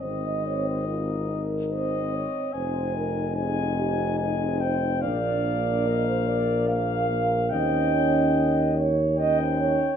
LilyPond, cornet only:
\new Staff \with { instrumentName = "Cornet" } { \time 3/4 \key aes \major \tempo 4 = 72 ees''4. r8 ees''4 | aes''4 aes''4 aes''8 g''8 | f''2 f''4 | g''4. r8 g''4 | }